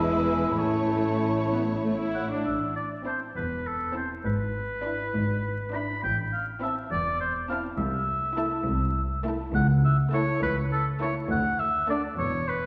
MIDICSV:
0, 0, Header, 1, 9, 480
1, 0, Start_track
1, 0, Key_signature, 0, "minor"
1, 0, Tempo, 620476
1, 455, Time_signature, 6, 3, 24, 8
1, 2373, Tempo, 593472
1, 4773, Tempo, 585938
1, 7643, Key_signature, 2, "major"
1, 10201, End_track
2, 0, Start_track
2, 0, Title_t, "Flute"
2, 0, Program_c, 0, 73
2, 207, Note_on_c, 0, 80, 61
2, 401, Note_on_c, 0, 83, 42
2, 412, Note_off_c, 0, 80, 0
2, 456, Note_on_c, 0, 81, 51
2, 468, Note_off_c, 0, 83, 0
2, 1184, Note_off_c, 0, 81, 0
2, 10201, End_track
3, 0, Start_track
3, 0, Title_t, "Violin section"
3, 0, Program_c, 1, 48
3, 0, Note_on_c, 1, 71, 51
3, 437, Note_off_c, 1, 71, 0
3, 462, Note_on_c, 1, 73, 44
3, 1725, Note_off_c, 1, 73, 0
3, 2374, Note_on_c, 1, 81, 45
3, 2552, Note_off_c, 1, 81, 0
3, 3087, Note_on_c, 1, 81, 45
3, 3268, Note_off_c, 1, 81, 0
3, 3805, Note_on_c, 1, 83, 55
3, 3987, Note_off_c, 1, 83, 0
3, 4528, Note_on_c, 1, 83, 48
3, 4708, Note_off_c, 1, 83, 0
3, 5254, Note_on_c, 1, 81, 56
3, 5431, Note_off_c, 1, 81, 0
3, 5975, Note_on_c, 1, 81, 60
3, 6149, Note_off_c, 1, 81, 0
3, 6684, Note_on_c, 1, 81, 69
3, 6862, Note_off_c, 1, 81, 0
3, 7403, Note_on_c, 1, 81, 64
3, 7582, Note_off_c, 1, 81, 0
3, 8124, Note_on_c, 1, 81, 69
3, 8304, Note_off_c, 1, 81, 0
3, 8845, Note_on_c, 1, 81, 65
3, 9026, Note_off_c, 1, 81, 0
3, 9568, Note_on_c, 1, 81, 66
3, 9748, Note_off_c, 1, 81, 0
3, 10201, End_track
4, 0, Start_track
4, 0, Title_t, "Oboe"
4, 0, Program_c, 2, 68
4, 0, Note_on_c, 2, 76, 67
4, 454, Note_on_c, 2, 73, 52
4, 466, Note_off_c, 2, 76, 0
4, 1546, Note_off_c, 2, 73, 0
4, 1661, Note_on_c, 2, 78, 50
4, 1770, Note_off_c, 2, 78, 0
4, 1902, Note_on_c, 2, 76, 49
4, 2133, Note_off_c, 2, 76, 0
4, 2136, Note_on_c, 2, 74, 52
4, 2241, Note_off_c, 2, 74, 0
4, 2369, Note_on_c, 2, 72, 57
4, 2478, Note_off_c, 2, 72, 0
4, 2612, Note_on_c, 2, 71, 60
4, 2858, Note_on_c, 2, 69, 58
4, 2870, Note_off_c, 2, 71, 0
4, 3095, Note_off_c, 2, 69, 0
4, 3099, Note_on_c, 2, 72, 54
4, 3206, Note_off_c, 2, 72, 0
4, 3337, Note_on_c, 2, 71, 70
4, 4539, Note_on_c, 2, 83, 68
4, 4552, Note_off_c, 2, 71, 0
4, 4769, Note_off_c, 2, 83, 0
4, 4774, Note_on_c, 2, 79, 75
4, 4881, Note_off_c, 2, 79, 0
4, 5011, Note_on_c, 2, 77, 59
4, 5119, Note_off_c, 2, 77, 0
4, 5255, Note_on_c, 2, 76, 65
4, 5362, Note_off_c, 2, 76, 0
4, 5495, Note_on_c, 2, 74, 79
4, 5728, Note_off_c, 2, 74, 0
4, 5732, Note_on_c, 2, 72, 62
4, 5839, Note_off_c, 2, 72, 0
4, 5969, Note_on_c, 2, 77, 69
4, 6076, Note_off_c, 2, 77, 0
4, 6203, Note_on_c, 2, 76, 71
4, 7377, Note_off_c, 2, 76, 0
4, 7652, Note_on_c, 2, 78, 89
4, 7758, Note_off_c, 2, 78, 0
4, 7896, Note_on_c, 2, 76, 69
4, 8002, Note_off_c, 2, 76, 0
4, 8137, Note_on_c, 2, 73, 92
4, 8367, Note_off_c, 2, 73, 0
4, 8371, Note_on_c, 2, 71, 89
4, 8478, Note_off_c, 2, 71, 0
4, 8614, Note_on_c, 2, 69, 75
4, 8721, Note_off_c, 2, 69, 0
4, 8857, Note_on_c, 2, 73, 76
4, 8963, Note_off_c, 2, 73, 0
4, 9096, Note_on_c, 2, 78, 95
4, 9327, Note_on_c, 2, 76, 86
4, 9340, Note_off_c, 2, 78, 0
4, 9569, Note_off_c, 2, 76, 0
4, 9580, Note_on_c, 2, 74, 78
4, 9686, Note_off_c, 2, 74, 0
4, 9811, Note_on_c, 2, 73, 93
4, 10055, Note_on_c, 2, 71, 81
4, 10067, Note_off_c, 2, 73, 0
4, 10201, Note_off_c, 2, 71, 0
4, 10201, End_track
5, 0, Start_track
5, 0, Title_t, "Violin section"
5, 0, Program_c, 3, 48
5, 0, Note_on_c, 3, 64, 56
5, 445, Note_off_c, 3, 64, 0
5, 454, Note_on_c, 3, 64, 45
5, 1721, Note_off_c, 3, 64, 0
5, 2367, Note_on_c, 3, 64, 42
5, 2548, Note_off_c, 3, 64, 0
5, 3081, Note_on_c, 3, 64, 46
5, 3265, Note_off_c, 3, 64, 0
5, 3818, Note_on_c, 3, 64, 45
5, 3994, Note_off_c, 3, 64, 0
5, 4536, Note_on_c, 3, 64, 53
5, 4712, Note_off_c, 3, 64, 0
5, 5247, Note_on_c, 3, 64, 59
5, 5427, Note_off_c, 3, 64, 0
5, 5979, Note_on_c, 3, 64, 61
5, 6151, Note_off_c, 3, 64, 0
5, 6688, Note_on_c, 3, 64, 66
5, 6864, Note_off_c, 3, 64, 0
5, 7405, Note_on_c, 3, 64, 65
5, 7583, Note_off_c, 3, 64, 0
5, 8131, Note_on_c, 3, 64, 70
5, 8307, Note_off_c, 3, 64, 0
5, 8854, Note_on_c, 3, 64, 66
5, 9031, Note_off_c, 3, 64, 0
5, 9574, Note_on_c, 3, 62, 67
5, 9751, Note_off_c, 3, 62, 0
5, 10201, End_track
6, 0, Start_track
6, 0, Title_t, "French horn section"
6, 0, Program_c, 4, 60
6, 0, Note_on_c, 4, 56, 47
6, 0, Note_on_c, 4, 64, 52
6, 453, Note_on_c, 4, 61, 48
6, 454, Note_off_c, 4, 56, 0
6, 1636, Note_off_c, 4, 64, 0
6, 1643, Note_off_c, 4, 61, 0
6, 10201, End_track
7, 0, Start_track
7, 0, Title_t, "Viola section"
7, 0, Program_c, 5, 48
7, 0, Note_on_c, 5, 56, 47
7, 457, Note_off_c, 5, 56, 0
7, 458, Note_on_c, 5, 57, 44
7, 1137, Note_off_c, 5, 57, 0
7, 1186, Note_on_c, 5, 59, 48
7, 1248, Note_off_c, 5, 59, 0
7, 1426, Note_on_c, 5, 57, 42
7, 1544, Note_off_c, 5, 57, 0
7, 1546, Note_on_c, 5, 64, 51
7, 1783, Note_off_c, 5, 64, 0
7, 1793, Note_on_c, 5, 62, 45
7, 1906, Note_off_c, 5, 62, 0
7, 2373, Note_on_c, 5, 60, 41
7, 2552, Note_off_c, 5, 60, 0
7, 3089, Note_on_c, 5, 60, 45
7, 3269, Note_off_c, 5, 60, 0
7, 3810, Note_on_c, 5, 62, 45
7, 3990, Note_off_c, 5, 62, 0
7, 4538, Note_on_c, 5, 62, 49
7, 4713, Note_off_c, 5, 62, 0
7, 5255, Note_on_c, 5, 60, 46
7, 5431, Note_off_c, 5, 60, 0
7, 5974, Note_on_c, 5, 60, 53
7, 6149, Note_off_c, 5, 60, 0
7, 6690, Note_on_c, 5, 57, 57
7, 6865, Note_off_c, 5, 57, 0
7, 7408, Note_on_c, 5, 57, 65
7, 7585, Note_off_c, 5, 57, 0
7, 8122, Note_on_c, 5, 57, 62
7, 8303, Note_off_c, 5, 57, 0
7, 8846, Note_on_c, 5, 57, 56
7, 9026, Note_off_c, 5, 57, 0
7, 9567, Note_on_c, 5, 57, 56
7, 9748, Note_off_c, 5, 57, 0
7, 10201, End_track
8, 0, Start_track
8, 0, Title_t, "Cello section"
8, 0, Program_c, 6, 48
8, 0, Note_on_c, 6, 40, 46
8, 458, Note_off_c, 6, 40, 0
8, 458, Note_on_c, 6, 45, 40
8, 1723, Note_off_c, 6, 45, 0
8, 1909, Note_on_c, 6, 45, 46
8, 2473, Note_off_c, 6, 45, 0
8, 2615, Note_on_c, 6, 40, 49
8, 3195, Note_off_c, 6, 40, 0
8, 3334, Note_on_c, 6, 44, 53
8, 3912, Note_off_c, 6, 44, 0
8, 4053, Note_on_c, 6, 44, 57
8, 4632, Note_off_c, 6, 44, 0
8, 4778, Note_on_c, 6, 45, 65
8, 5353, Note_off_c, 6, 45, 0
8, 5496, Note_on_c, 6, 40, 60
8, 6070, Note_off_c, 6, 40, 0
8, 6215, Note_on_c, 6, 36, 67
8, 6786, Note_off_c, 6, 36, 0
8, 6926, Note_on_c, 6, 36, 67
8, 7504, Note_off_c, 6, 36, 0
8, 7643, Note_on_c, 6, 37, 72
8, 8225, Note_off_c, 6, 37, 0
8, 8368, Note_on_c, 6, 37, 67
8, 8949, Note_off_c, 6, 37, 0
8, 9089, Note_on_c, 6, 38, 69
8, 9670, Note_off_c, 6, 38, 0
8, 9812, Note_on_c, 6, 40, 64
8, 10201, Note_off_c, 6, 40, 0
8, 10201, End_track
9, 0, Start_track
9, 0, Title_t, "Double bass section"
9, 0, Program_c, 7, 48
9, 0, Note_on_c, 7, 28, 48
9, 457, Note_off_c, 7, 28, 0
9, 459, Note_on_c, 7, 33, 44
9, 1724, Note_off_c, 7, 33, 0
9, 1905, Note_on_c, 7, 33, 53
9, 2471, Note_off_c, 7, 33, 0
9, 2615, Note_on_c, 7, 28, 50
9, 3195, Note_off_c, 7, 28, 0
9, 3335, Note_on_c, 7, 32, 56
9, 3913, Note_off_c, 7, 32, 0
9, 4058, Note_on_c, 7, 32, 52
9, 4635, Note_off_c, 7, 32, 0
9, 4784, Note_on_c, 7, 33, 62
9, 5356, Note_off_c, 7, 33, 0
9, 5500, Note_on_c, 7, 28, 55
9, 6072, Note_off_c, 7, 28, 0
9, 6219, Note_on_c, 7, 36, 67
9, 6788, Note_off_c, 7, 36, 0
9, 6934, Note_on_c, 7, 36, 69
9, 7508, Note_off_c, 7, 36, 0
9, 7650, Note_on_c, 7, 37, 77
9, 8228, Note_off_c, 7, 37, 0
9, 8370, Note_on_c, 7, 37, 67
9, 8950, Note_off_c, 7, 37, 0
9, 9092, Note_on_c, 7, 38, 75
9, 9672, Note_off_c, 7, 38, 0
9, 9812, Note_on_c, 7, 28, 66
9, 10201, Note_off_c, 7, 28, 0
9, 10201, End_track
0, 0, End_of_file